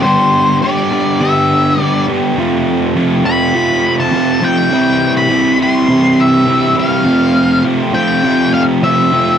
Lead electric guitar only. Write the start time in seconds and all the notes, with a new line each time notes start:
0.03 C5
0.62 D5
1.21 E5
1.81 D5
3.26 B5
4.00 A5
4.44 G5
5.17 B5
5.63 C6
6.21 E5
6.79 F5
7.95 G5
8.54 F5
8.84 E5